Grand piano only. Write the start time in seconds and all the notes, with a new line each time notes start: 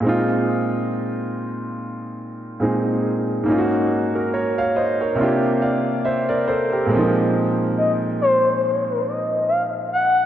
0.00 A#2 G#3
0.04 C4 D#4
0.09 F4
2.60 A#2 G#3 C4 D#4 G#4
3.44 G#2 A#3
3.48 C#4 D#4
3.52 F4
3.58 F#4
4.15 F#4 A#4
4.34 A#4 C#5
4.58 C#5 F5
4.76 C5 D#5
5.01 A#4 C#5
5.15 C3 A#3 D4
5.21 F4 G4
5.62 D5 F5
6.05 C5 E5
6.29 A#4 D5
6.48 A4 C5
6.72 G4 A#4
6.86 A#2 G#3
6.90 C4 C#4
6.94 F3
6.99 D#4